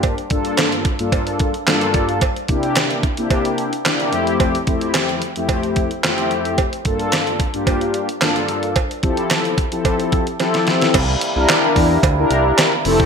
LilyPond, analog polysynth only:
\new Staff \with { instrumentName = "Analog polysynth" } { \time 4/4 \key c \mixolydian \tempo 4 = 110 <g, bes d' f' g'>16 r16 <g, bes d' f' a'>4 r16 <g, bes d' f' a'>4 r16 <g, bes d' f' a'>4 | r8 <c bes d' e' g'>4 r16 <c bes d' e' g'>4 r16 <c bes d' e' g'>8 <f, a c' e' g'>8~ | <f, a c' e' g'>16 r16 <f, a c' e' g'>4 r16 <f, a c' e' g'>4 r16 <f, a c' e' f' g'>4 | r8 <g, bes d' f' a'>4 r16 <g, bes d' f' g'>4 r16 <g, bes d' f' a'>4 |
r8 <f c' e' g' a'>4 r16 <f c' e' g' a'>4 r16 <f c' e' g' a'>4 | r8. <d' e' g' bes'>4~ <d' e' g' bes'>16 r16 <d' e' g' bes'>4 r16 <c' e' g' a'>8 | }